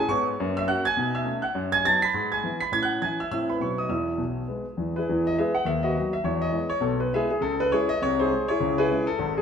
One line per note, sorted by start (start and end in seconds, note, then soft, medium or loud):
0.08 0.32 G#2 medium
0.08 0.33 B3 medium
0.08 0.26 C#5 medium
0.08 0.26 C#6 medium
0.40 0.64 F#2 medium
0.40 0.56 A#3 soft
0.57 0.68 E5 medium
0.57 0.68 E6 medium
0.67 0.83 A#3 soft
0.67 0.84 C#4 soft
0.67 0.84 F#4 medium
0.67 0.84 F#5 medium
0.67 0.85 F#6 medium
0.85 1.13 G#5 medium
0.85 1.14 G#6 loud
0.97 1.22 B2 medium
0.97 1.14 D#4 medium
1.15 1.42 E5 medium
1.15 1.44 E6 medium
1.25 1.41 A3 soft
1.25 1.42 C#4 soft
1.25 1.42 D#4 soft
1.42 1.54 F#5 medium
1.42 1.55 F#6 medium
1.55 1.80 F#2 medium
1.72 1.84 G#5 medium
1.72 1.84 G#6 loud
1.85 2.01 F#3 soft
1.85 2.01 B3 soft
1.85 2.02 D#4 medium
1.85 2.02 A5 medium
1.85 2.02 A6 loud
2.02 2.30 B5 medium
2.02 2.31 B6 loud
2.14 2.39 G#2 medium
2.32 2.60 G#5 medium
2.32 2.61 G#6 medium
2.44 2.59 E3 soft
2.44 2.60 B3 soft
2.44 2.60 E4 soft
2.61 2.72 B5 medium
2.61 2.72 B6 medium
2.72 2.97 A2 medium
2.72 2.89 C#4 soft
2.72 2.81 G#6 loud
2.83 3.02 F#5 medium
2.83 3.02 F#6 medium
3.01 3.18 E3 soft
3.01 3.17 C#4 soft
3.01 3.18 E4 soft
3.01 3.19 G#5 medium
3.01 3.19 G#6 medium
3.20 3.31 E5 medium
3.20 3.30 E6 medium
3.31 3.56 A2 medium
3.31 3.48 A3 soft
3.31 3.49 C4 soft
3.31 3.49 E4 soft
3.31 3.48 E5 medium
3.31 3.49 E6 medium
3.50 3.59 B4 soft
3.50 3.61 B5 medium
3.60 3.85 B2 soft
3.60 3.76 F#3 soft
3.60 3.77 B3 soft
3.60 3.78 D#4 soft
3.60 3.77 B4 soft
3.60 3.78 C#5 soft
3.60 3.78 C#6 medium
3.78 3.90 D#5 soft
3.78 3.90 D#6 medium
3.89 4.13 E2 medium
3.89 4.13 E3 medium
3.89 4.92 E5 soft
3.89 4.95 E6 medium
4.18 4.42 B1 soft
4.18 4.42 B2 soft
4.48 4.64 G#3 soft
4.48 4.64 B3 soft
4.48 4.65 B4 soft
4.77 5.01 E2 soft
4.77 5.01 E3 soft
4.96 5.24 E4 medium
4.96 5.24 G#4 soft
4.96 5.25 B4 medium
5.09 5.33 E2 medium
5.09 5.33 E3 medium
5.27 5.38 D#5 medium
5.37 5.53 G#3 soft
5.37 5.54 B3 soft
5.37 5.54 E4 soft
5.37 5.54 G#4 medium
5.37 5.54 B4 medium
5.37 5.55 E5 medium
5.55 5.66 F#5 medium
5.65 5.90 D#2 medium
5.65 5.90 D#3 medium
5.65 5.83 E5 medium
5.83 5.96 F#4 medium
5.83 6.11 B4 medium
5.83 6.12 D#5 medium
5.96 6.12 F#3 soft
5.96 6.13 B3 soft
5.96 6.13 F#4 soft
6.13 6.25 E5 medium
6.24 6.49 E2 medium
6.24 6.49 E3 medium
6.24 6.42 C#5 medium
6.42 6.71 D#5 medium
6.51 6.68 G#3 soft
6.51 6.69 B3 soft
6.51 6.69 E4 soft
6.69 6.82 C#5 medium
6.80 7.06 B1 medium
6.80 7.07 B2 medium
6.80 7.00 A4 medium
7.00 7.12 B4 medium
7.13 7.29 G#3 soft
7.13 7.29 B3 soft
7.13 7.30 E4 soft
7.13 7.29 G#4 medium
7.13 7.30 B4 medium
7.13 7.31 E5 medium
7.31 7.42 G#4 medium
7.41 7.66 C#2 medium
7.41 7.66 C#3 medium
7.41 7.59 A4 medium
7.60 7.72 B4 medium
7.71 7.87 G#3 soft
7.71 7.88 C#4 soft
7.71 7.89 E4 medium
7.71 7.89 G#4 medium
7.71 7.89 C#5 medium
7.89 8.01 D#5 loud
8.02 8.27 C2 medium
8.02 8.26 C3 medium
8.02 8.19 C#5 loud
8.20 8.29 D#4 medium
8.20 8.47 G#4 medium
8.20 8.48 C5 medium
8.30 8.46 G#3 soft
8.30 8.47 D#4 soft
8.48 8.76 E4 medium
8.48 8.77 G#4 medium
8.48 8.77 C#5 medium
8.60 8.85 C#2 medium
8.60 8.85 C#3 medium
8.78 8.89 E4 medium
8.78 9.06 G#4 medium
8.78 9.07 B4 medium
8.90 9.06 G#3 soft
8.90 9.07 C#4 soft
8.90 9.06 E4 medium
9.07 9.36 A4 medium
9.19 9.42 G#1 medium
9.19 9.42 G#2 medium
9.38 9.42 G#4 medium